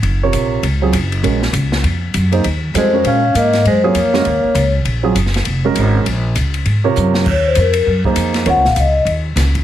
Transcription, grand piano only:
X:1
M:4/4
L:1/8
Q:"Swing" 1/4=199
K:Ebdor
V:1 name="Grand piano"
z [C,FBd]3 z [G,CFA] z2 | [A,DGB] z6 [B,EAc] | z2 [=G,CF=A] [_A,D_GB]2 z3 | z [G,CFA] z [A,DGB] z4 |
z [G,CFA] z3 [A,DGB]3 | z4 z [C,FBd]3 | z4 z [B,EAc]3 | [CFBd] z6 z |]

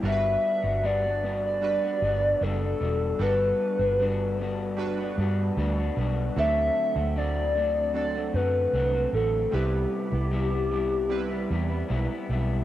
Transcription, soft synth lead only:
X:1
M:4/4
L:1/16
Q:1/4=76
K:G
V:1 name="Soft synth lead"
e4 d3 d4- d A4 | B8 z8 | e4 d4 d2 B4 A2 | G12 z4 |]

